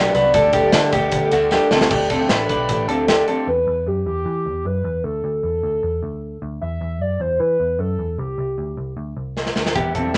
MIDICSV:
0, 0, Header, 1, 7, 480
1, 0, Start_track
1, 0, Tempo, 392157
1, 419, Time_signature, 4, 2, 24, 8
1, 12457, End_track
2, 0, Start_track
2, 0, Title_t, "Soft synth lead"
2, 0, Program_c, 0, 80
2, 0, Note_on_c, 0, 74, 103
2, 165, Note_off_c, 0, 74, 0
2, 172, Note_on_c, 0, 74, 106
2, 1802, Note_off_c, 0, 74, 0
2, 4259, Note_on_c, 0, 71, 90
2, 4744, Note_on_c, 0, 67, 78
2, 4762, Note_off_c, 0, 71, 0
2, 4970, Note_off_c, 0, 67, 0
2, 4977, Note_on_c, 0, 67, 87
2, 5707, Note_on_c, 0, 71, 87
2, 5725, Note_off_c, 0, 67, 0
2, 6168, Note_on_c, 0, 69, 87
2, 6186, Note_off_c, 0, 71, 0
2, 6644, Note_off_c, 0, 69, 0
2, 6651, Note_on_c, 0, 69, 88
2, 7806, Note_off_c, 0, 69, 0
2, 8094, Note_on_c, 0, 76, 103
2, 8584, Note_on_c, 0, 74, 98
2, 8603, Note_off_c, 0, 76, 0
2, 8825, Note_on_c, 0, 72, 91
2, 8844, Note_off_c, 0, 74, 0
2, 9054, Note_on_c, 0, 71, 94
2, 9072, Note_off_c, 0, 72, 0
2, 9546, Note_on_c, 0, 69, 88
2, 9565, Note_off_c, 0, 71, 0
2, 10017, Note_off_c, 0, 69, 0
2, 10025, Note_on_c, 0, 67, 82
2, 10932, Note_off_c, 0, 67, 0
2, 11938, Note_on_c, 0, 76, 101
2, 12443, Note_off_c, 0, 76, 0
2, 12457, End_track
3, 0, Start_track
3, 0, Title_t, "Clean electric guitar"
3, 0, Program_c, 1, 27
3, 0, Note_on_c, 1, 59, 72
3, 0, Note_on_c, 1, 67, 92
3, 178, Note_off_c, 1, 67, 0
3, 183, Note_on_c, 1, 71, 79
3, 185, Note_off_c, 1, 59, 0
3, 192, Note_on_c, 1, 62, 62
3, 416, Note_off_c, 1, 62, 0
3, 417, Note_off_c, 1, 71, 0
3, 422, Note_on_c, 1, 69, 114
3, 431, Note_on_c, 1, 62, 83
3, 653, Note_off_c, 1, 69, 0
3, 658, Note_on_c, 1, 67, 76
3, 663, Note_off_c, 1, 62, 0
3, 668, Note_on_c, 1, 59, 59
3, 896, Note_off_c, 1, 67, 0
3, 900, Note_on_c, 1, 69, 77
3, 902, Note_off_c, 1, 59, 0
3, 908, Note_on_c, 1, 62, 60
3, 1132, Note_off_c, 1, 69, 0
3, 1136, Note_on_c, 1, 67, 85
3, 1142, Note_off_c, 1, 62, 0
3, 1147, Note_on_c, 1, 59, 65
3, 1587, Note_off_c, 1, 67, 0
3, 1592, Note_off_c, 1, 59, 0
3, 1623, Note_on_c, 1, 66, 82
3, 1631, Note_on_c, 1, 57, 66
3, 1853, Note_off_c, 1, 66, 0
3, 1858, Note_on_c, 1, 67, 92
3, 1863, Note_off_c, 1, 57, 0
3, 1869, Note_on_c, 1, 62, 70
3, 2094, Note_off_c, 1, 67, 0
3, 2099, Note_on_c, 1, 69, 77
3, 2102, Note_off_c, 1, 62, 0
3, 2110, Note_on_c, 1, 60, 58
3, 2332, Note_off_c, 1, 69, 0
3, 2337, Note_on_c, 1, 67, 95
3, 2342, Note_off_c, 1, 60, 0
3, 2349, Note_on_c, 1, 62, 77
3, 2572, Note_off_c, 1, 67, 0
3, 2577, Note_on_c, 1, 69, 76
3, 2581, Note_off_c, 1, 62, 0
3, 2588, Note_on_c, 1, 60, 60
3, 2809, Note_off_c, 1, 69, 0
3, 2814, Note_on_c, 1, 71, 67
3, 2820, Note_off_c, 1, 60, 0
3, 2825, Note_on_c, 1, 62, 53
3, 3044, Note_off_c, 1, 71, 0
3, 3054, Note_off_c, 1, 62, 0
3, 3059, Note_on_c, 1, 71, 74
3, 3068, Note_on_c, 1, 62, 61
3, 3507, Note_off_c, 1, 71, 0
3, 3512, Note_off_c, 1, 62, 0
3, 3534, Note_on_c, 1, 69, 73
3, 3546, Note_on_c, 1, 60, 58
3, 3769, Note_off_c, 1, 69, 0
3, 3774, Note_on_c, 1, 67, 81
3, 3779, Note_off_c, 1, 60, 0
3, 3786, Note_on_c, 1, 62, 59
3, 4009, Note_off_c, 1, 67, 0
3, 4014, Note_on_c, 1, 69, 71
3, 4019, Note_off_c, 1, 62, 0
3, 4020, Note_on_c, 1, 60, 52
3, 4253, Note_off_c, 1, 69, 0
3, 4257, Note_off_c, 1, 60, 0
3, 11939, Note_on_c, 1, 67, 87
3, 11950, Note_on_c, 1, 59, 67
3, 12178, Note_off_c, 1, 67, 0
3, 12183, Note_off_c, 1, 59, 0
3, 12183, Note_on_c, 1, 69, 64
3, 12193, Note_on_c, 1, 60, 52
3, 12413, Note_off_c, 1, 69, 0
3, 12418, Note_on_c, 1, 71, 59
3, 12425, Note_off_c, 1, 60, 0
3, 12457, Note_off_c, 1, 71, 0
3, 12457, End_track
4, 0, Start_track
4, 0, Title_t, "Twelve-string acoustic guitar"
4, 0, Program_c, 2, 25
4, 0, Note_on_c, 2, 54, 66
4, 0, Note_on_c, 2, 59, 67
4, 0, Note_on_c, 2, 62, 72
4, 0, Note_on_c, 2, 66, 70
4, 274, Note_off_c, 2, 66, 0
4, 285, Note_off_c, 2, 62, 0
4, 288, Note_on_c, 2, 66, 57
4, 291, Note_off_c, 2, 54, 0
4, 296, Note_off_c, 2, 59, 0
4, 300, Note_on_c, 2, 62, 53
4, 315, Note_on_c, 2, 59, 42
4, 413, Note_off_c, 2, 66, 0
4, 413, Note_on_c, 2, 50, 78
4, 415, Note_off_c, 2, 62, 0
4, 417, Note_off_c, 2, 59, 0
4, 421, Note_on_c, 2, 57, 83
4, 430, Note_on_c, 2, 62, 85
4, 432, Note_on_c, 2, 67, 83
4, 761, Note_off_c, 2, 67, 0
4, 775, Note_off_c, 2, 50, 0
4, 776, Note_on_c, 2, 67, 69
4, 777, Note_off_c, 2, 62, 0
4, 779, Note_off_c, 2, 57, 0
4, 792, Note_on_c, 2, 62, 57
4, 803, Note_on_c, 2, 57, 53
4, 1128, Note_off_c, 2, 57, 0
4, 1135, Note_off_c, 2, 62, 0
4, 1135, Note_on_c, 2, 50, 75
4, 1136, Note_off_c, 2, 67, 0
4, 1142, Note_on_c, 2, 57, 70
4, 1149, Note_on_c, 2, 62, 75
4, 1158, Note_on_c, 2, 67, 79
4, 1602, Note_off_c, 2, 50, 0
4, 1607, Note_on_c, 2, 50, 67
4, 1610, Note_off_c, 2, 57, 0
4, 1615, Note_on_c, 2, 57, 70
4, 1620, Note_off_c, 2, 62, 0
4, 1625, Note_on_c, 2, 62, 77
4, 1630, Note_off_c, 2, 67, 0
4, 1635, Note_on_c, 2, 67, 77
4, 1835, Note_off_c, 2, 50, 0
4, 1844, Note_off_c, 2, 57, 0
4, 1850, Note_on_c, 2, 50, 66
4, 1852, Note_off_c, 2, 62, 0
4, 1859, Note_on_c, 2, 57, 66
4, 1860, Note_off_c, 2, 67, 0
4, 1866, Note_on_c, 2, 62, 72
4, 1874, Note_on_c, 2, 67, 77
4, 2189, Note_off_c, 2, 67, 0
4, 2204, Note_on_c, 2, 67, 64
4, 2209, Note_off_c, 2, 62, 0
4, 2212, Note_off_c, 2, 50, 0
4, 2216, Note_off_c, 2, 57, 0
4, 2224, Note_on_c, 2, 62, 50
4, 2234, Note_on_c, 2, 57, 48
4, 2318, Note_off_c, 2, 57, 0
4, 2322, Note_on_c, 2, 50, 60
4, 2323, Note_off_c, 2, 62, 0
4, 2329, Note_off_c, 2, 67, 0
4, 2333, Note_on_c, 2, 57, 66
4, 2338, Note_on_c, 2, 62, 69
4, 2349, Note_on_c, 2, 67, 75
4, 2667, Note_off_c, 2, 67, 0
4, 2682, Note_on_c, 2, 67, 62
4, 2685, Note_off_c, 2, 62, 0
4, 2687, Note_off_c, 2, 50, 0
4, 2693, Note_off_c, 2, 57, 0
4, 2700, Note_on_c, 2, 62, 54
4, 2709, Note_on_c, 2, 57, 52
4, 3032, Note_off_c, 2, 57, 0
4, 3041, Note_on_c, 2, 50, 67
4, 3046, Note_off_c, 2, 62, 0
4, 3047, Note_off_c, 2, 67, 0
4, 3047, Note_on_c, 2, 57, 67
4, 3060, Note_on_c, 2, 62, 76
4, 3065, Note_on_c, 2, 67, 77
4, 3268, Note_off_c, 2, 50, 0
4, 3281, Note_off_c, 2, 57, 0
4, 3283, Note_on_c, 2, 50, 69
4, 3286, Note_off_c, 2, 62, 0
4, 3296, Note_off_c, 2, 67, 0
4, 3296, Note_on_c, 2, 57, 65
4, 3300, Note_on_c, 2, 62, 70
4, 3311, Note_on_c, 2, 67, 71
4, 3760, Note_off_c, 2, 50, 0
4, 3763, Note_off_c, 2, 57, 0
4, 3765, Note_on_c, 2, 50, 61
4, 3776, Note_off_c, 2, 67, 0
4, 3778, Note_on_c, 2, 57, 65
4, 3782, Note_off_c, 2, 62, 0
4, 3787, Note_on_c, 2, 62, 67
4, 3790, Note_on_c, 2, 67, 74
4, 3993, Note_off_c, 2, 50, 0
4, 4002, Note_off_c, 2, 57, 0
4, 4007, Note_on_c, 2, 50, 62
4, 4009, Note_off_c, 2, 62, 0
4, 4017, Note_on_c, 2, 57, 65
4, 4018, Note_off_c, 2, 67, 0
4, 4024, Note_on_c, 2, 62, 64
4, 4033, Note_on_c, 2, 67, 74
4, 4250, Note_off_c, 2, 50, 0
4, 4255, Note_off_c, 2, 57, 0
4, 4258, Note_off_c, 2, 62, 0
4, 4263, Note_off_c, 2, 67, 0
4, 11926, Note_on_c, 2, 52, 51
4, 11944, Note_on_c, 2, 55, 57
4, 11949, Note_on_c, 2, 62, 58
4, 11957, Note_on_c, 2, 67, 60
4, 12273, Note_off_c, 2, 67, 0
4, 12282, Note_off_c, 2, 62, 0
4, 12288, Note_on_c, 2, 67, 51
4, 12290, Note_off_c, 2, 55, 0
4, 12292, Note_off_c, 2, 52, 0
4, 12297, Note_on_c, 2, 62, 48
4, 12304, Note_on_c, 2, 55, 41
4, 12314, Note_on_c, 2, 52, 38
4, 12457, Note_off_c, 2, 52, 0
4, 12457, Note_off_c, 2, 55, 0
4, 12457, Note_off_c, 2, 62, 0
4, 12457, Note_off_c, 2, 67, 0
4, 12457, End_track
5, 0, Start_track
5, 0, Title_t, "String machine"
5, 0, Program_c, 3, 50
5, 0, Note_on_c, 3, 50, 85
5, 0, Note_on_c, 3, 54, 81
5, 0, Note_on_c, 3, 59, 80
5, 0, Note_on_c, 3, 66, 91
5, 402, Note_off_c, 3, 54, 0
5, 402, Note_off_c, 3, 59, 0
5, 402, Note_off_c, 3, 66, 0
5, 410, Note_on_c, 3, 57, 76
5, 411, Note_on_c, 3, 67, 90
5, 415, Note_on_c, 3, 55, 76
5, 2285, Note_off_c, 3, 50, 0
5, 2310, Note_off_c, 3, 57, 0
5, 2311, Note_off_c, 3, 67, 0
5, 2313, Note_off_c, 3, 55, 0
5, 12457, End_track
6, 0, Start_track
6, 0, Title_t, "Picked electric bass"
6, 0, Program_c, 4, 34
6, 179, Note_on_c, 4, 36, 98
6, 383, Note_off_c, 4, 36, 0
6, 416, Note_on_c, 4, 38, 112
6, 824, Note_off_c, 4, 38, 0
6, 900, Note_on_c, 4, 50, 99
6, 1102, Note_off_c, 4, 50, 0
6, 1132, Note_on_c, 4, 38, 91
6, 1338, Note_off_c, 4, 38, 0
6, 1374, Note_on_c, 4, 50, 101
6, 1578, Note_off_c, 4, 50, 0
6, 1618, Note_on_c, 4, 38, 90
6, 1922, Note_off_c, 4, 38, 0
6, 2096, Note_on_c, 4, 38, 97
6, 2299, Note_off_c, 4, 38, 0
6, 2334, Note_on_c, 4, 38, 99
6, 2742, Note_off_c, 4, 38, 0
6, 2812, Note_on_c, 4, 33, 80
6, 3016, Note_off_c, 4, 33, 0
6, 3051, Note_on_c, 4, 35, 78
6, 3256, Note_off_c, 4, 35, 0
6, 3295, Note_on_c, 4, 33, 89
6, 3525, Note_off_c, 4, 33, 0
6, 3525, Note_on_c, 4, 38, 85
6, 3936, Note_off_c, 4, 38, 0
6, 4250, Note_on_c, 4, 40, 86
6, 4455, Note_off_c, 4, 40, 0
6, 4492, Note_on_c, 4, 40, 82
6, 4696, Note_off_c, 4, 40, 0
6, 4730, Note_on_c, 4, 42, 74
6, 4935, Note_off_c, 4, 42, 0
6, 4971, Note_on_c, 4, 40, 79
6, 5176, Note_off_c, 4, 40, 0
6, 5207, Note_on_c, 4, 52, 80
6, 5455, Note_on_c, 4, 40, 64
6, 5473, Note_off_c, 4, 52, 0
6, 5658, Note_off_c, 4, 40, 0
6, 5693, Note_on_c, 4, 42, 72
6, 5898, Note_off_c, 4, 42, 0
6, 5928, Note_on_c, 4, 40, 77
6, 6135, Note_off_c, 4, 40, 0
6, 6170, Note_on_c, 4, 38, 83
6, 6376, Note_off_c, 4, 38, 0
6, 6411, Note_on_c, 4, 38, 82
6, 6617, Note_off_c, 4, 38, 0
6, 6649, Note_on_c, 4, 40, 76
6, 6856, Note_off_c, 4, 40, 0
6, 6895, Note_on_c, 4, 38, 69
6, 7100, Note_off_c, 4, 38, 0
6, 7134, Note_on_c, 4, 40, 82
6, 7339, Note_off_c, 4, 40, 0
6, 7375, Note_on_c, 4, 38, 73
6, 7784, Note_off_c, 4, 38, 0
6, 7858, Note_on_c, 4, 38, 80
6, 8062, Note_off_c, 4, 38, 0
6, 8098, Note_on_c, 4, 40, 92
6, 8302, Note_off_c, 4, 40, 0
6, 8335, Note_on_c, 4, 40, 79
6, 8572, Note_off_c, 4, 40, 0
6, 8572, Note_on_c, 4, 42, 79
6, 8778, Note_off_c, 4, 42, 0
6, 8813, Note_on_c, 4, 40, 73
6, 9019, Note_off_c, 4, 40, 0
6, 9054, Note_on_c, 4, 52, 84
6, 9259, Note_off_c, 4, 52, 0
6, 9299, Note_on_c, 4, 40, 70
6, 9502, Note_off_c, 4, 40, 0
6, 9534, Note_on_c, 4, 42, 80
6, 9739, Note_off_c, 4, 42, 0
6, 9776, Note_on_c, 4, 40, 79
6, 9981, Note_off_c, 4, 40, 0
6, 10017, Note_on_c, 4, 36, 84
6, 10221, Note_off_c, 4, 36, 0
6, 10257, Note_on_c, 4, 36, 84
6, 10461, Note_off_c, 4, 36, 0
6, 10501, Note_on_c, 4, 38, 78
6, 10703, Note_off_c, 4, 38, 0
6, 10738, Note_on_c, 4, 36, 77
6, 10942, Note_off_c, 4, 36, 0
6, 10975, Note_on_c, 4, 38, 75
6, 11180, Note_off_c, 4, 38, 0
6, 11219, Note_on_c, 4, 36, 66
6, 11626, Note_off_c, 4, 36, 0
6, 11701, Note_on_c, 4, 38, 65
6, 11903, Note_off_c, 4, 38, 0
6, 11942, Note_on_c, 4, 40, 94
6, 12144, Note_off_c, 4, 40, 0
6, 12177, Note_on_c, 4, 40, 86
6, 12381, Note_off_c, 4, 40, 0
6, 12457, End_track
7, 0, Start_track
7, 0, Title_t, "Drums"
7, 179, Note_on_c, 9, 42, 70
7, 179, Note_on_c, 9, 54, 60
7, 301, Note_off_c, 9, 42, 0
7, 301, Note_off_c, 9, 54, 0
7, 415, Note_on_c, 9, 42, 83
7, 417, Note_on_c, 9, 36, 121
7, 420, Note_on_c, 9, 54, 50
7, 537, Note_off_c, 9, 42, 0
7, 539, Note_off_c, 9, 36, 0
7, 542, Note_off_c, 9, 54, 0
7, 647, Note_on_c, 9, 42, 80
7, 652, Note_on_c, 9, 54, 55
7, 653, Note_on_c, 9, 36, 91
7, 769, Note_off_c, 9, 42, 0
7, 775, Note_off_c, 9, 54, 0
7, 776, Note_off_c, 9, 36, 0
7, 887, Note_on_c, 9, 38, 117
7, 893, Note_on_c, 9, 42, 102
7, 910, Note_on_c, 9, 54, 78
7, 1009, Note_off_c, 9, 38, 0
7, 1016, Note_off_c, 9, 42, 0
7, 1033, Note_off_c, 9, 54, 0
7, 1132, Note_on_c, 9, 42, 81
7, 1133, Note_on_c, 9, 36, 90
7, 1255, Note_off_c, 9, 36, 0
7, 1255, Note_off_c, 9, 42, 0
7, 1365, Note_on_c, 9, 42, 92
7, 1375, Note_on_c, 9, 36, 93
7, 1387, Note_on_c, 9, 54, 37
7, 1488, Note_off_c, 9, 42, 0
7, 1497, Note_off_c, 9, 36, 0
7, 1510, Note_off_c, 9, 54, 0
7, 1610, Note_on_c, 9, 42, 81
7, 1611, Note_on_c, 9, 54, 51
7, 1732, Note_off_c, 9, 42, 0
7, 1733, Note_off_c, 9, 54, 0
7, 1845, Note_on_c, 9, 54, 95
7, 1852, Note_on_c, 9, 38, 62
7, 1968, Note_off_c, 9, 54, 0
7, 1974, Note_off_c, 9, 38, 0
7, 2092, Note_on_c, 9, 38, 90
7, 2092, Note_on_c, 9, 54, 58
7, 2214, Note_off_c, 9, 38, 0
7, 2214, Note_off_c, 9, 54, 0
7, 2214, Note_on_c, 9, 38, 96
7, 2335, Note_on_c, 9, 36, 110
7, 2335, Note_on_c, 9, 49, 89
7, 2336, Note_off_c, 9, 38, 0
7, 2457, Note_off_c, 9, 36, 0
7, 2457, Note_off_c, 9, 49, 0
7, 2567, Note_on_c, 9, 42, 72
7, 2572, Note_on_c, 9, 36, 81
7, 2690, Note_off_c, 9, 42, 0
7, 2695, Note_off_c, 9, 36, 0
7, 2807, Note_on_c, 9, 38, 105
7, 2813, Note_on_c, 9, 42, 86
7, 2929, Note_off_c, 9, 38, 0
7, 2936, Note_off_c, 9, 42, 0
7, 3052, Note_on_c, 9, 36, 82
7, 3052, Note_on_c, 9, 42, 78
7, 3174, Note_off_c, 9, 42, 0
7, 3175, Note_off_c, 9, 36, 0
7, 3291, Note_on_c, 9, 42, 88
7, 3296, Note_on_c, 9, 36, 90
7, 3413, Note_off_c, 9, 42, 0
7, 3418, Note_off_c, 9, 36, 0
7, 3534, Note_on_c, 9, 42, 71
7, 3656, Note_off_c, 9, 42, 0
7, 3774, Note_on_c, 9, 42, 83
7, 3776, Note_on_c, 9, 38, 104
7, 3896, Note_off_c, 9, 42, 0
7, 3898, Note_off_c, 9, 38, 0
7, 4011, Note_on_c, 9, 42, 58
7, 4133, Note_off_c, 9, 42, 0
7, 11465, Note_on_c, 9, 38, 50
7, 11580, Note_off_c, 9, 38, 0
7, 11580, Note_on_c, 9, 38, 52
7, 11698, Note_off_c, 9, 38, 0
7, 11698, Note_on_c, 9, 38, 73
7, 11821, Note_off_c, 9, 38, 0
7, 11823, Note_on_c, 9, 38, 79
7, 11941, Note_on_c, 9, 42, 71
7, 11942, Note_on_c, 9, 36, 101
7, 11945, Note_off_c, 9, 38, 0
7, 12064, Note_off_c, 9, 36, 0
7, 12064, Note_off_c, 9, 42, 0
7, 12177, Note_on_c, 9, 42, 66
7, 12179, Note_on_c, 9, 36, 74
7, 12300, Note_off_c, 9, 42, 0
7, 12301, Note_off_c, 9, 36, 0
7, 12415, Note_on_c, 9, 38, 88
7, 12457, Note_off_c, 9, 38, 0
7, 12457, End_track
0, 0, End_of_file